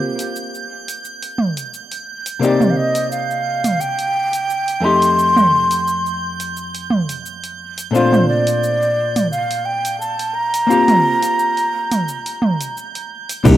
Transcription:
Already playing: hollow-body jazz guitar A#3 C4 F4 G4, synth texture G6
0.19 open hi-hat, cabasa
0.36 cabasa
0.55 cabasa
0.88 open hi-hat, cabasa
1.05 cabasa
1.22 open hi-hat, cabasa
1.38 mid tom
1.57 open hi-hat, cabasa
1.74 cabasa
1.92 open hi-hat, cabasa
2.26 open hi-hat, cabasa
2.39 hollow-body jazz guitar C3 A#3 C4 D#4, flute D5, cabasa
2.44 hollow-body jazz guitar G4
2.60 mid tom, cabasa
2.70 flute F5
2.77 flute D#5
2.95 open hi-hat, cabasa
3.11 flute F5, cabasa
3.31 cabasa
3.64 mid tom, open hi-hat, cabasa
3.81 flute G5, cabasa
3.99 open hi-hat, cabasa
4.33 open hi-hat, cabasa
4.50 cabasa
4.68 open hi-hat, cabasa
4.80 hollow-body jazz guitar F2 A3 D#4, flute C6
4.85 hollow-body jazz guitar G4
5.02 open hi-hat, cabasa
5.19 cabasa
5.36 mid tom, cabasa
5.71 open hi-hat, cabasa
5.88 cabasa
6.06 cabasa
6.40 open hi-hat, cabasa
6.57 cabasa
6.75 open hi-hat, cabasa
6.90 mid tom
7.09 open hi-hat, cabasa
7.26 cabasa
7.44 open hi-hat, cabasa
7.78 open hi-hat, cabasa
7.91 hollow-body jazz guitar A#2 A3 C4 D4, flute C5
7.95 hollow-body jazz guitar F4, cabasa
8.13 mid tom, cabasa
8.28 flute D5
8.47 open hi-hat, cabasa
8.64 cabasa
8.82 cabasa
9.16 mid tom, open hi-hat, cabasa
9.31 flute F5, cabasa
9.51 open hi-hat, cabasa
9.65 flute G5
9.85 open hi-hat, cabasa
10.00 flute A5, cabasa
10.19 open hi-hat, cabasa
10.35 flute A#5
10.54 open hi-hat, cabasa
10.67 hollow-body jazz guitar A#3 C4 F4, cabasa
10.72 hollow-body jazz guitar G4
10.88 mid tom, open hi-hat, cabasa
11.23 open hi-hat, cabasa
11.39 cabasa
11.57 open hi-hat, cabasa
11.91 mid tom, open hi-hat, cabasa
12.08 cabasa
12.26 open hi-hat, cabasa
12.42 mid tom
12.61 open hi-hat, cabasa
12.77 cabasa
12.95 open hi-hat, cabasa
13.29 open hi-hat, cabasa
13.44 fretless electric bass C2, hollow-body jazz guitar A#3 D4 D#4 G4, kick, crash, high bongo, cabasa

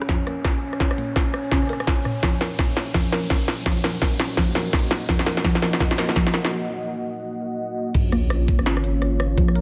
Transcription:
Already playing: analog synth pad A#3 F4, synth drone C#4, riser
0.02 cross-stick
0.09 synth pluck F3, kick, snare, closed hi-hat
0.27 synth pluck A#4, cross-stick, closed hi-hat
0.45 kick, cross-stick, snare, closed hi-hat
0.73 cross-stick
0.80 kick, snare, closed hi-hat
0.91 cross-stick
0.98 synth pluck A#3, closed hi-hat
1.16 kick, cross-stick, snare, closed hi-hat
1.34 cross-stick
1.52 synth pluck C#4, kick, snare, closed hi-hat
1.62 cross-stick
1.67 synth pluck A#4, cross-stick, closed hi-hat
1.73 cross-stick
1.80 cross-stick
1.87 kick, snare, closed hi-hat
2.05 synth pluck A#2, cross-stick
2.23 synth pluck F3, analog synth pad F#4 D#5 F#5, kick, snare, closed hi-hat
2.41 synth pluck A#4, snare, closed hi-hat
2.59 kick, snare, closed hi-hat
2.77 snare
2.94 synth pluck F3, kick, snare, closed hi-hat
3.12 synth pluck A#4, snare, closed hi-hat
3.30 kick, snare, closed hi-hat
3.48 snare
3.66 synth pluck F3, kick, snare, closed hi-hat
3.84 synth pluck A#4, snare, closed hi-hat
4.02 kick, snare, closed hi-hat
4.20 snare
4.37 synth pluck F3, kick, snare, closed hi-hat
4.55 synth pluck A#4, snare, closed hi-hat
4.73 kick, snare, closed hi-hat
4.91 snare
5.09 synth pluck F3, kick, snare, closed hi-hat
5.19 snare
5.26 synth pluck A#4, snare, closed hi-hat
5.37 snare
5.44 synth pluck F3, kick, snare, closed hi-hat
5.55 snare
5.62 synth pluck A#4, snare
5.73 snare
5.80 synth pluck F3, kick, snare, closed hi-hat
5.91 snare
5.98 synth pluck A#4, snare, closed hi-hat
6.09 snare
6.16 synth pluck F3, kick, snare, closed hi-hat
6.27 snare
6.34 synth pluck A#4, snare
6.45 snare
7.95 808-style bass A#1, analog synth pad A#3 C#4 F4 C#5, kick, closed hi-hat, crash, sub drop
8.12 synth pluck A#3, cross-stick, closed hi-hat
8.30 cross-stick, closed hi-hat
8.48 kick
8.59 808-style bass G#1, cross-stick
8.66 synth pluck C#4, snare, closed hi-hat
8.77 cross-stick
8.84 closed hi-hat
9.02 cross-stick, closed hi-hat
9.20 cross-stick, closed hi-hat
9.38 808-style bass A#1, synth pluck F3, kick, closed hi-hat
9.48 cross-stick
9.55 synth pluck A#4, closed hi-hat

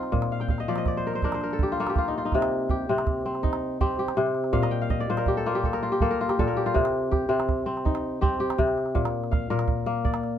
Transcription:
Already playing: kora C3 G3 C4 D#4 F4 G4
0.03 calabash click
0.12 kora A#2, calabash thump, calabash click
0.22 calabash click
0.32 kora F5
0.40 kora G5, calabash click
0.49 kora F5, calabash thump, calabash click
0.58 kora D#5, calabash click
0.68 kora F3 D5
0.76 kora D#5, calabash click
0.86 kora D5, calabash thump, calabash click
0.97 kora C5
1.07 kora A#4
1.14 kora C5, calabash click
1.22 kora D4 A#4, calabash thump, calabash click
1.32 kora C5, calabash click
1.41 kora A#4, calabash click
1.51 kora A4, calabash click
1.59 kora G4, calabash thump
1.68 kora F4, calabash click
1.78 kora A#3 A4, calabash click
1.87 kora G4, calabash click
1.96 kora F4, calabash thump
2.05 kora D#4, calabash click
2.18 kora F4
2.25 kora D#4
2.32 kora C3, calabash thump, calabash click
2.42 calabash click
2.69 kora G4, calabash thump, calabash click
2.89 kora C3 C4
2.98 calabash click
3.07 calabash thump, calabash click
3.26 kora C4, calabash click
3.35 calabash click
3.43 kora D#4, calabash thump, calabash click
3.53 calabash click
3.81 kora C4 G4, calabash thump
3.99 kora G4
4.08 calabash click
4.17 kora C3, calabash click
4.27 calabash click
4.35 calabash click
4.44 calabash click
4.53 kora A#2 F5, calabash thump, calabash click
4.62 kora D#5, calabash click
4.71 kora G5
4.81 kora F5
4.90 kora D#5, calabash thump, calabash click
5.00 kora D5
5.10 kora A#2 C5
5.17 kora A#4, calabash click
5.26 kora G4, calabash thump, calabash click
5.37 kora A4
5.46 kora A#3 F4, calabash click
5.55 kora G4, calabash click
5.64 kora A4, calabash thump, calabash click
5.73 kora A#4, calabash click
5.83 kora F4
5.92 kora G4
6.01 kora A#3 A4, calabash thump
6.11 kora A#4
6.21 kora F4
6.29 kora G4, calabash click
6.39 kora A#2 A4, calabash thump, calabash click
6.47 kora A#4
6.57 kora G4, calabash click
6.66 kora F4, calabash click
6.74 kora C3, calabash thump, calabash click
6.85 calabash click
7.11 kora G4, calabash thump, calabash click
7.29 kora C3 C4
7.40 calabash click
7.49 calabash thump, calabash click
7.66 kora C4, calabash click
7.77 calabash click
7.85 kora D#4, calabash thump, calabash click
7.95 calabash click
8.21 kora C4 G4, calabash thump
8.40 kora G4
8.50 calabash click
8.58 kora C3, calabash thump, calabash click
8.68 calabash click
8.78 calabash click
8.86 calabash click
8.95 kora A#2, calabash thump
9.05 calabash click
9.24 calabash click
9.31 kora F5, calabash thump, calabash click
9.50 kora A#2 A#4, calabash click
9.59 calabash click
9.68 calabash thump
9.86 kora A#3, calabash click
10.05 kora D5, calabash thump
10.14 calabash click
10.24 calabash click

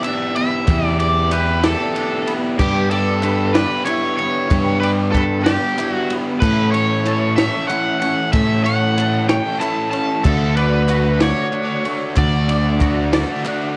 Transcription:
Already playing: overdriven electric guitar E3 G4 D5
0.03 overdriven electric guitar B3 D4 E4 G4 E5, clap, ride
0.36 overdriven electric guitar B3 E5, ride
0.52 clap
0.67 fingered electric bass E2, overdriven electric guitar E3 B3 E4 G4, kick, clap, ride
0.87 overdriven electric guitar D5
1.00 overdriven electric guitar E4 G4 D5, ride
1.31 overdriven electric guitar B3 E4 G4 B4, clap, ride
1.49 clap
1.62 overdriven electric guitar B3 E4 G4 A4 D5, snare, ride
1.81 clap
1.95 overdriven electric guitar B3 D4 E4 G4, ride
2.27 overdriven electric guitar B3, ride
2.44 clap
2.58 fingered electric bass G2, overdriven electric guitar G3 B3 D4 G4, kick, clap, crash
2.91 overdriven electric guitar D4 G4 A4 D5, ride
3.23 overdriven electric guitar B3 D4 G4 B4, clap, ride
3.39 clap
3.54 overdriven electric guitar B3 D4 G4 B4 D5, snare, ride
3.71 clap
3.85 overdriven electric guitar B3 D4 E4 G4 C#5, clap, ride
4.17 overdriven electric guitar B3 C#5, ride
4.35 clap
4.50 fingered electric bass G2, overdriven electric guitar G3 B3 D4 G4, kick, clap, ride
4.68 clap
4.80 overdriven electric guitar G4 B4 D5, clap, ride
4.85 overdriven electric guitar D4
5.12 overdriven electric guitar B3 D4 A4 B4, kick, clap, ride
5.17 overdriven electric guitar G4
5.44 overdriven electric guitar D4 G4 D5, snare, ride
5.49 overdriven electric guitar B3
5.64 clap
5.77 overdriven electric guitar B3 D4 E4 G4, clap, ride
5.92 overdriven electric guitar F#4
6.10 overdriven electric guitar B3, ride
6.40 fingered electric bass A2, overdriven electric guitar E3 A3 C#4 A4 B4, kick, clap, crash
6.72 overdriven electric guitar C#4 A4 C#5, ride
6.77 overdriven electric guitar A3
7.05 overdriven electric guitar E3 A3 C#4 A4, clap, ride
7.36 overdriven electric guitar E3 A3 C#4 A4 C#5 E5, snare, ride
7.55 clap
7.68 overdriven electric guitar E3 A3 C#4 E4 F#5, clap, ride
7.72 overdriven electric guitar A4
8.00 overdriven electric guitar C#4 F#5, ride
8.19 clap
8.33 fingered electric bass A2, overdriven electric guitar E3 A3 C#4 A4 E5, kick, clap, ride
8.64 overdriven electric guitar C#4 A4 C#5 F#5, ride
8.68 overdriven electric guitar A3
8.96 overdriven electric guitar E3 A3 C#4 A4, clap, ride
9.14 clap
9.28 overdriven electric guitar E3 A3 C#4 A4 C#5 G5, snare, ride
9.46 clap
9.60 overdriven electric guitar E3 A3 C#4 E4 A4 A5, clap, ride
9.91 overdriven electric guitar C#4 A5, ride
10.10 clap
10.24 fingered electric bass D2, overdriven electric guitar D3 A3 D4 A4, kick, clap, crash
10.28 overdriven electric guitar F#4
10.56 overdriven electric guitar D4 F#4 B4 D5, ride
10.88 overdriven electric guitar A3 D4 F#4, clap, ride
11.05 clap
11.20 overdriven electric guitar A3 D4 F#4 C#5 D5, snare, ride
11.51 overdriven electric guitar A3 D4 F#4, clap, ride
11.85 overdriven electric guitar A3, ride
12.01 clap
12.16 fingered electric bass D2, overdriven electric guitar D3 A3 D4 F#4 D5, kick, clap, ride
12.48 overdriven electric guitar D4 F#4 D5, clap, ride
12.65 clap
12.80 overdriven electric guitar A3 D4 F#4, kick, clap, ride
13.12 overdriven electric guitar A3 D4 F#4 D5, snare, ride
13.44 overdriven electric guitar A3 D4 F#4, clap, ride
13.62 clap

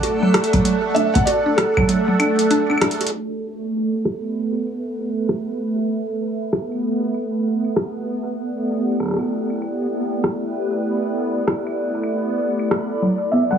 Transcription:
Already playing: synth texture A3 A4, analog synth pad A3 A4 D5 F#5, felt piano F#5
0.03 synth arpeggio sound F#4, closed hi-hat
0.22 synth arpeggio sound F#3
0.34 synth arpeggio sound A4, cross-stick, closed hi-hat
0.44 closed hi-hat
0.53 synth arpeggio sound F#3, kick, closed hi-hat
0.65 synth arpeggio sound F#3, closed hi-hat
0.95 synth arpeggio sound D4, felt piano E5, closed hi-hat
1.14 synth arpeggio sound A3, felt piano F#5, kick, closed hi-hat
1.25 synth arpeggio sound F#4, felt piano D5, closed hi-hat
1.46 synth arpeggio sound D4
1.56 felt piano A4, cross-stick, closed hi-hat
1.77 synth arpeggio sound F#3, kick, claves
1.89 synth arpeggio sound F#3, closed hi-hat
2.08 synth arpeggio sound F#3
2.20 synth arpeggio sound D4, closed hi-hat, claves
2.39 closed hi-hat
2.51 synth arpeggio sound D4, closed hi-hat
2.70 synth arpeggio sound D4, claves
2.78 synth arpeggio sound D4, cross-stick, closed hi-hat, claves
2.91 closed hi-hat
3.01 synth arpeggio sound F#4, closed hi-hat
3.07 closed hi-hat
3.13 synth texture B3 B4
3.83 analog synth pad E5
4.05 cross-stick, claves
4.24 claves
4.55 claves
4.67 claves
5.29 cross-stick
6.53 cross-stick, claves
6.72 claves
7.15 claves
7.65 claves
7.76 cross-stick
8.07 analog synth pad A3
8.43 analog synth pad D5
8.65 analog synth pad G4
8.72 analog synth pad E4
9.00 cross-stick, claves
9.03 cross-stick
9.06 cross-stick
9.08 cross-stick
9.11 cross-stick
9.14 cross-stick
9.16 cross-stick, claves
9.50 claves
9.62 claves
10.24 cross-stick
11.47 cross-stick, claves
11.67 claves
12.04 claves
12.59 claves
12.71 cross-stick
13.02 synth arpeggio sound F#3
13.29 analog synth pad B4, felt piano E5
13.33 synth arpeggio sound B3
13.38 analog synth pad F#3
13.51 synth arpeggio sound G3, felt piano F#5

